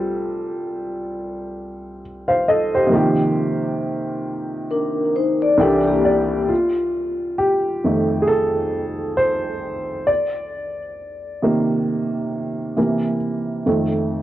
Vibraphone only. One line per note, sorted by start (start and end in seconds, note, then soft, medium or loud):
4.71 5.14 D4 medium
4.71 5.13 A#4 medium
5.16 5.41 D#4 medium
5.16 5.40 C5 medium
5.42 5.60 D5 medium
5.61 5.86 D4 medium
5.61 5.86 A#4 medium
5.88 6.48 A#3 medium
5.88 6.47 G4 medium